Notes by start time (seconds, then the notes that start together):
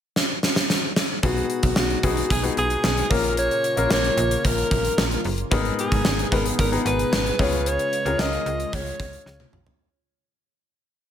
0.16 snare
0.43 snare
0.56 snare
0.70 snare
0.96 snare
1.23 B1 B2 G#3 B3 D#4 F#4 G#4, kick, closed hi-hat
1.37 closed hi-hat
1.50 closed hi-hat
1.63 B1, kick, closed hi-hat
1.76 B1 F#4, snare
1.90 closed hi-hat
2.03 B1 B3 D#4 F#4 G#4, kick, closed hi-hat
2.17 closed hi-hat
2.30 B1 G#4, kick, closed hi-hat
2.43 B3 D#4 F#4 G#4, closed hi-hat
2.57 B1 G#4, closed hi-hat
2.70 closed hi-hat
2.84 B1, snare
2.97 closed hi-hat
3.10 A#1 A#2 C#3 A#3 C#4 F4 A#4, kick, open hi-hat
3.24 closed hi-hat
3.37 C#5, closed hi-hat
3.51 closed hi-hat
3.64 closed hi-hat
3.77 A#1 A#3 C#4 F4 A#4, closed hi-hat
3.90 A#1 A#3 C#4 F4 A#4 C#5, snare
4.04 closed hi-hat
4.17 A#1, closed hi-hat
4.31 closed hi-hat
4.45 A#1 A#4, kick, closed hi-hat
4.58 closed hi-hat
4.71 A#1, kick, closed hi-hat
4.85 closed hi-hat
4.98 A#1, snare
5.11 closed hi-hat
5.24 F#1, open hi-hat
5.38 closed hi-hat
5.51 G#1 G#2 B2 B3 D#4 G#4 A#4, kick, closed hi-hat
5.65 closed hi-hat
5.79 G#4, closed hi-hat
5.92 G#1, kick, closed hi-hat
6.05 G#1, snare
6.19 closed hi-hat
6.31 G#1 B3 D#4 G#4 A#4 B4, kick, closed hi-hat
6.46 closed hi-hat
6.59 G#1 A#4, kick, closed hi-hat
6.72 B3 D#4 G#4 A#5, closed hi-hat
6.85 G#1 B4, closed hi-hat
6.99 closed hi-hat
7.12 G#1, snare
7.26 closed hi-hat
7.39 C#2 C#3 G#3 C#4 F4 G#4 B4 C#5, kick, open hi-hat
7.53 closed hi-hat
7.66 C#5, closed hi-hat
7.79 closed hi-hat
7.93 closed hi-hat
8.05 C#2 C#4 F4 G#4 A#4, closed hi-hat
8.19 C#2 C#4 F4 G#4 A#4 D#5, snare
8.33 closed hi-hat
8.46 C#2, closed hi-hat
8.60 closed hi-hat
8.73 C#2 C#5, kick, closed hi-hat
8.86 closed hi-hat
8.99 C#2, kick, closed hi-hat
9.13 closed hi-hat
9.26 C#2, snare
9.40 high tom
9.53 B1, mid tom
9.66 floor tom